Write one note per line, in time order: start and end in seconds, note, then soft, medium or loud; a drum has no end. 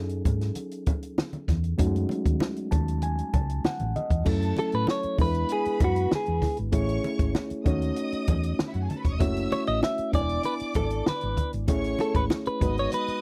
0.00 0.21 F#2 loud
0.00 1.74 F#3 medium
0.00 1.75 C#4 medium
0.00 1.75 D#4 medium
0.00 1.76 G#4 medium
0.00 1.75 A4 medium
0.09 closed hi-hat medium
0.25 0.50 G#2 medium
0.25 kick medium
0.25 closed hi-hat medium
0.25 low conga medium
0.41 snare soft
0.41 closed hi-hat soft
0.55 closed hi-hat medium
0.55 muted conga soft
0.71 closed hi-hat medium
0.86 kick medium
0.86 closed hi-hat medium
0.86 muted conga medium
0.86 low conga medium
1.03 closed hi-hat medium
1.18 snare loud
1.18 high conga medium
1.33 closed hi-hat soft
1.33 high conga medium
1.48 1.73 E2 medium
1.48 kick medium
1.48 snare soft
1.48 closed hi-hat medium
1.48 high conga medium
1.64 closed hi-hat soft
1.77 2.04 F#2 loud
1.77 4.21 F#3 medium
1.77 4.22 A3 medium
1.77 4.22 C#4 medium
1.77 4.22 D#4 medium
1.77 1.86 F#4 medium
1.77 kick loud
1.77 closed hi-hat medium
1.77 muted conga soft
1.87 4.26 G#3 medium
1.96 closed hi-hat medium
2.09 closed hi-hat medium
2.09 muted conga soft
2.26 2.38 D#2 medium
2.26 kick medium
2.26 closed hi-hat soft
2.40 snare medium
2.40 high conga medium
2.56 closed hi-hat medium
2.71 3.21 D#2 medium
2.71 3.00 A5 medium
2.71 kick medium
2.71 closed hi-hat medium
2.71 low conga medium
2.88 closed hi-hat soft
3.02 3.31 G#5 medium
3.02 closed hi-hat medium
3.02 muted conga soft
3.19 closed hi-hat soft
3.34 3.58 C#2 medium
3.34 3.62 A5 medium
3.34 kick medium
3.34 closed hi-hat medium
3.34 muted conga soft
3.34 low conga medium
3.50 closed hi-hat medium
3.64 3.94 F#5 medium
3.64 muted fingered electric bass stroke soft
3.64 snare loud
3.64 high conga medium
3.79 3.93 A1 medium
3.79 closed hi-hat soft
3.79 high conga soft
3.96 4.24 D#5 medium
3.96 closed hi-hat medium
3.96 high conga medium
4.10 4.23 E2 medium
4.10 kick medium
4.10 closed hi-hat soft
4.25 4.51 F#2 medium
4.25 5.18 F#3 medium
4.25 5.18 A3 medium
4.25 5.19 C#4 medium
4.25 5.18 E4 medium
4.25 4.87 A4 medium
4.25 5.19 A4 medium
4.25 4.87 A5 medium
4.25 kick loud
4.25 crash medium
4.25 muted conga soft
4.42 closed hi-hat soft
4.56 4.74 A4 medium
4.56 closed hi-hat medium
4.56 muted conga soft
4.72 4.85 A2 medium
4.72 4.89 B4 medium
4.72 closed hi-hat soft
4.87 5.18 C#5 medium
4.87 snare medium
4.87 high conga medium
5.03 muted fingered electric bass stroke soft
5.03 closed hi-hat medium
5.17 5.43 E2 medium
5.17 6.69 G#3 medium
5.17 6.70 B3 medium
5.17 6.70 D4 medium
5.17 6.71 E4 medium
5.17 5.26 A4 medium
5.17 6.40 B4 medium
5.17 6.40 B5 medium
5.17 kick loud
5.17 open hi-hat soft
5.17 low conga medium
5.21 5.52 B4 medium
5.27 6.74 B4 medium
5.34 closed hi-hat soft
5.49 5.83 G#4 medium
5.49 closed hi-hat medium
5.65 muted fingered electric bass stroke soft
5.65 closed hi-hat medium
5.80 6.05 F#2 medium
5.80 kick medium
5.80 closed hi-hat medium
5.80 muted conga medium
5.80 low conga medium
5.84 6.14 F#4 medium
5.96 closed hi-hat medium
6.11 6.57 G#4 medium
6.11 muted fingered electric bass stroke soft
6.11 snare loud
6.11 high conga medium
6.26 6.40 E2 medium
6.26 closed hi-hat soft
6.42 kick medium
6.42 snare soft
6.42 open hi-hat soft
6.42 high conga medium
6.57 6.71 G#1 medium
6.57 closed hi-hat soft
6.72 6.97 A1 medium
6.72 7.63 A3 medium
6.72 7.64 C#4 medium
6.72 7.66 E4 medium
6.72 7.66 G#4 medium
6.72 7.66 C#5 medium
6.72 7.34 C#5 medium
6.72 7.34 C#6 medium
6.72 kick loud
6.72 closed hi-hat medium
6.72 muted conga soft
6.89 closed hi-hat soft
7.04 closed hi-hat medium
7.04 muted conga soft
7.19 7.32 G#1 medium
7.19 kick medium
7.19 closed hi-hat soft
7.35 snare medium
7.35 high conga medium
7.50 muted fingered electric bass stroke soft
7.50 closed hi-hat medium
7.64 7.90 D#2 medium
7.64 9.17 A3 medium
7.64 9.17 C#4 medium
7.64 9.17 D#4 medium
7.64 9.18 F#4 medium
7.64 9.18 C#5 medium
7.64 8.58 D#5 medium
7.64 8.59 D#6 medium
7.64 kick medium
7.64 closed hi-hat medium
7.64 low conga medium
7.82 closed hi-hat medium
7.96 closed hi-hat medium
8.12 muted fingered electric bass stroke soft
8.12 closed hi-hat medium
8.27 8.52 E2 medium
8.27 kick medium
8.27 closed hi-hat medium
8.27 muted conga soft
8.27 low conga medium
8.43 closed hi-hat medium
8.59 muted fingered electric bass stroke soft
8.59 snare loud
8.59 high conga medium
8.66 8.74 E4 medium
8.66 8.74 E5 medium
8.74 8.87 F#2 medium
8.74 8.82 F#4 medium
8.74 8.82 F#5 medium
8.74 closed hi-hat soft
8.82 8.90 G#4 medium
8.82 8.90 G#5 medium
8.89 8.97 A4 medium
8.89 8.97 A5 medium
8.89 closed hi-hat medium
8.89 high conga medium
8.96 9.05 B4 medium
8.96 9.05 B5 medium
9.04 9.21 E1 medium
9.04 9.12 C#5 medium
9.04 9.12 C#6 medium
9.04 kick medium
9.04 closed hi-hat soft
9.12 9.20 D#5 medium
9.12 9.20 D#6 medium
9.19 9.45 F#1 medium
9.19 10.13 A3 medium
9.19 10.13 C#4 medium
9.19 10.13 E4 medium
9.19 10.13 F#4 medium
9.19 10.14 C#5 medium
9.19 9.80 E5 medium
9.19 9.80 E6 loud
9.19 kick loud
9.19 closed hi-hat medium
9.19 muted conga soft
9.37 closed hi-hat soft
9.52 9.66 C#5 medium
9.52 closed hi-hat medium
9.52 muted conga soft
9.67 9.80 A1 medium
9.67 9.83 D#5 medium
9.67 closed hi-hat soft
9.83 10.12 E5 medium
9.83 snare loud
9.83 high conga medium
9.98 muted fingered electric bass stroke soft
9.98 closed hi-hat medium
10.12 10.38 E1 medium
10.12 11.64 B3 medium
10.12 11.65 D4 medium
10.12 11.65 E4 medium
10.12 10.21 C#5 medium
10.12 11.34 D5 medium
10.12 10.45 D5 medium
10.12 11.65 G#5 medium
10.12 11.34 D6 loud
10.12 kick loud
10.12 closed hi-hat medium
10.12 low conga medium
10.22 11.69 D5 medium
10.29 closed hi-hat medium
10.43 10.54 B4 medium
10.43 closed hi-hat medium
10.43 muted conga soft
10.60 muted fingered electric bass stroke soft
10.60 closed hi-hat medium
10.74 11.00 G#1 medium
10.74 11.05 A4 medium
10.74 kick medium
10.74 closed hi-hat medium
10.74 muted conga medium
10.74 low conga medium
10.90 closed hi-hat medium
11.06 11.51 B4 medium
11.06 muted fingered electric bass stroke soft
11.06 snare loud
11.06 high conga medium
11.21 11.35 G#1 medium
11.21 closed hi-hat soft
11.37 kick medium
11.37 closed hi-hat medium
11.37 high conga medium
11.53 11.69 G#1 medium
11.53 closed hi-hat soft
11.68 11.93 A1 medium
11.68 12.61 A3 medium
11.68 12.61 C#4 medium
11.68 12.61 E4 medium
11.68 12.61 G#4 medium
11.68 12.29 C#5 medium
11.68 12.62 C#5 medium
11.68 12.29 C#6 medium
11.68 kick loud
11.68 closed hi-hat medium
11.68 muted conga soft
11.84 closed hi-hat soft
11.99 12.16 A4 medium
11.99 closed hi-hat medium
11.99 muted conga soft
12.15 12.27 G#1 medium
12.15 12.24 B4 medium
12.15 kick medium
12.15 closed hi-hat soft
12.30 snare loud
12.30 high conga medium
12.46 12.78 B4 medium
12.46 muted fingered electric bass stroke soft
12.46 closed hi-hat soft
12.60 12.86 G#1 medium
12.60 13.21 G#3 medium
12.60 13.21 B3 medium
12.60 13.21 D#4 medium
12.60 13.21 F#4 medium
12.60 13.21 B4 medium
12.60 13.21 D#5 medium
12.60 13.21 D#6 loud
12.60 kick loud
12.60 closed hi-hat medium
12.60 low conga medium
12.78 12.94 C#5 medium
12.78 closed hi-hat soft
12.92 13.21 B4 medium
12.92 closed hi-hat loud
12.92 muted conga soft
13.08 muted fingered electric bass stroke soft
13.08 closed hi-hat medium